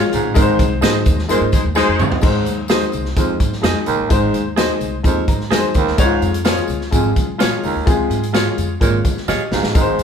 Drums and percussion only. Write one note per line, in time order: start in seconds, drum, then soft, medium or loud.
0.03 muted conga soft
0.12 closed hi-hat medium
0.12 tambourine medium
0.12 low conga medium
0.35 kick loud
0.35 closed hi-hat loud
0.35 tambourine medium
0.35 low conga medium
0.49 muted conga soft
0.59 kick medium
0.59 closed hi-hat medium
0.59 tambourine soft
0.59 high conga medium
0.82 snare loud
0.82 closed hi-hat medium
0.82 tambourine medium
0.82 muted conga soft
1.06 kick medium
1.06 closed hi-hat medium
1.06 tambourine medium
1.06 low conga medium
1.19 snare soft
1.29 closed hi-hat medium
1.29 tambourine medium
1.41 muted conga soft
1.52 kick medium
1.52 closed hi-hat medium
1.52 tambourine medium
1.52 high conga medium
1.75 snare medium
1.75 tambourine medium
1.75 high conga medium
1.89 muted conga soft
1.99 mid tom loud
1.99 tambourine medium
1.99 high conga medium
1.99 low conga medium
2.12 floor tom medium
2.21 kick loud
2.21 crash medium
2.21 tambourine medium
2.35 muted conga soft
2.45 closed hi-hat medium
2.45 tambourine soft
2.45 high conga medium
2.68 snare loud
2.68 closed hi-hat medium
2.68 tambourine medium
2.81 closed hi-hat soft
2.81 muted conga soft
2.92 closed hi-hat medium
2.92 tambourine soft
2.92 low conga medium
3.05 snare soft
3.17 kick medium
3.17 closed hi-hat medium
3.17 tambourine medium
3.17 muted conga soft
3.40 kick medium
3.40 closed hi-hat medium
3.40 tambourine soft
3.40 high conga medium
3.53 snare soft
3.63 snare loud
3.63 closed hi-hat medium
3.63 tambourine medium
3.63 muted conga soft
3.63 high conga medium
3.76 muted conga soft
3.86 closed hi-hat medium
3.86 tambourine soft
3.86 low conga medium
4.10 kick loud
4.10 closed hi-hat medium
4.10 tambourine medium
4.22 muted conga soft
4.34 closed hi-hat medium
4.34 tambourine soft
4.34 high conga soft
4.57 snare loud
4.57 closed hi-hat medium
4.57 tambourine medium
4.57 muted conga soft
4.69 muted conga soft
4.81 closed hi-hat medium
4.81 tambourine medium
4.81 low conga medium
5.04 kick medium
5.04 closed hi-hat medium
5.04 tambourine medium
5.28 kick medium
5.28 closed hi-hat medium
5.28 tambourine medium
5.28 high conga medium
5.40 snare soft
5.51 snare loud
5.51 closed hi-hat medium
5.51 tambourine medium
5.51 muted conga soft
5.51 high conga medium
5.62 muted conga soft
5.74 kick medium
5.74 closed hi-hat medium
5.74 tambourine medium
5.74 low conga medium
5.87 snare soft
5.98 kick loud
5.98 closed hi-hat loud
5.98 tambourine medium
6.10 muted conga soft
6.22 closed hi-hat medium
6.22 tambourine soft
6.22 high conga medium
6.34 closed hi-hat medium
6.45 snare loud
6.45 closed hi-hat medium
6.45 tambourine medium
6.45 muted conga soft
6.57 closed hi-hat soft
6.57 muted conga soft
6.68 closed hi-hat medium
6.68 tambourine medium
6.68 low conga medium
6.81 snare soft
6.92 kick medium
6.92 closed hi-hat medium
6.92 tambourine medium
7.16 kick medium
7.16 closed hi-hat medium
7.16 tambourine medium
7.16 high conga medium
7.40 snare loud
7.40 closed hi-hat medium
7.40 tambourine medium
7.40 high conga medium
7.63 open hi-hat soft
7.63 tambourine medium
7.63 low conga medium
7.87 kick loud
7.87 closed hi-hat medium
7.87 tambourine medium
7.87 muted conga soft
7.87 low conga medium
7.98 muted conga soft
8.11 closed hi-hat medium
8.11 tambourine soft
8.11 high conga medium
8.23 closed hi-hat medium
8.34 snare loud
8.34 closed hi-hat medium
8.34 tambourine medium
8.34 muted conga soft
8.46 muted conga soft
8.58 closed hi-hat medium
8.58 tambourine medium
8.58 low conga medium
8.81 kick medium
8.81 closed hi-hat medium
8.81 tambourine medium
8.81 muted conga soft
9.05 kick medium
9.05 closed hi-hat medium
9.05 tambourine medium
9.05 high conga medium
9.17 snare soft
9.28 snare medium
9.28 tambourine medium
9.28 muted conga soft
9.28 high conga medium
9.51 snare medium
9.51 tambourine medium
9.51 high conga soft
9.51 low conga medium
9.64 snare medium
9.75 kick loud
9.75 closed hi-hat medium
9.75 tambourine medium
9.75 muted conga soft
9.86 muted conga soft
9.99 closed hi-hat medium
9.99 tambourine soft
9.99 high conga medium